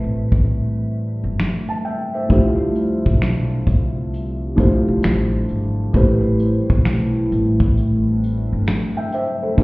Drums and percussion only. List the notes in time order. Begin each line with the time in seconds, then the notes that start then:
0.32 kick
1.40 finger snap, snare
2.30 kick, closed hi-hat
2.75 closed hi-hat
3.06 kick, closed hi-hat
3.22 finger snap, snare, closed hi-hat
3.67 kick, closed hi-hat
4.14 closed hi-hat
4.58 kick, closed hi-hat
5.03 finger snap, snare, closed hi-hat
5.48 closed hi-hat
5.94 kick, closed hi-hat
6.39 closed hi-hat
6.70 kick
6.85 finger snap, snare, closed hi-hat
7.32 closed hi-hat
7.60 kick, closed hi-hat
7.77 closed hi-hat
8.23 closed hi-hat
8.66 finger snap, snare, closed hi-hat
9.12 closed hi-hat
9.58 kick, closed hi-hat